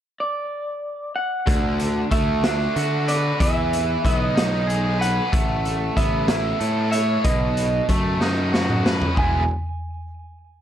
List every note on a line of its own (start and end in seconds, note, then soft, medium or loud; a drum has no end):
0.20 1.15 D5 medium
1.16 2.12 F#5 medium
1.46 2.02 D2 medium
1.46 3.07 D3 medium
1.46 kick loud
1.46 closed hi-hat medium
1.80 closed hi-hat medium
2.11 2.67 D2 medium
2.11 3.39 A3 medium
2.11 3.08 E5 loud
2.11 kick medium
2.11 closed hi-hat medium
2.44 3.40 D4 medium
2.44 snare loud
2.44 closed hi-hat medium
2.75 3.31 D3 medium
2.75 3.40 F#4 medium
2.75 closed hi-hat medium
3.08 4.99 B4 medium
3.08 3.40 D5 medium
3.08 closed hi-hat medium
3.40 3.96 E2 loud
3.40 5.00 E3 medium
3.40 4.00 E5 loud
3.40 kick loud
3.40 closed hi-hat medium
3.73 closed hi-hat medium
4.05 4.32 B1 loud
4.05 5.35 B3 medium
4.05 4.16 E5 medium
4.05 kick medium
4.05 closed hi-hat medium
4.16 5.01 D#5 medium
4.35 5.19 B1 medium
4.35 5.32 D#4 medium
4.35 snare loud
4.35 closed hi-hat medium
4.67 5.32 G#4 medium
4.67 closed hi-hat medium
4.99 5.35 B4 medium
4.99 5.96 F#5 medium
4.99 closed hi-hat medium
5.32 5.88 A1 medium
5.32 6.93 A3 medium
5.32 kick loud
5.32 closed hi-hat medium
5.65 closed hi-hat medium
5.97 6.52 A1 loud
5.97 7.89 B3 medium
5.97 6.91 E5 medium
5.97 kick medium
5.97 closed hi-hat medium
6.28 7.25 E4 medium
6.28 snare loud
6.28 closed hi-hat medium
6.60 7.16 A2 medium
6.60 7.25 A4 medium
6.60 closed hi-hat medium
6.91 7.24 C#5 medium
6.91 7.24 E5 medium
6.91 closed hi-hat medium
7.24 7.80 B1 medium
7.24 8.85 B2 medium
7.24 7.93 D#5 medium
7.24 kick loud
7.24 closed hi-hat medium
7.57 closed hi-hat medium
7.89 8.17 F#2 medium
7.89 9.15 A3 medium
7.89 kick medium
7.89 closed hi-hat medium
8.20 9.04 F#2 medium
8.20 9.16 D#4 medium
8.20 snare medium
8.53 9.16 F#4 medium
8.53 snare medium
8.70 mid tom medium
8.85 9.17 B4 medium
8.85 snare loud
9.02 floor tom medium
9.15 9.47 E1 medium
9.15 9.42 E3 medium
9.15 9.42 G#3 medium
9.15 9.43 B3 loud
9.15 9.43 E4 loud
9.15 9.48 G#5 medium
9.15 kick loud
9.15 floor tom loud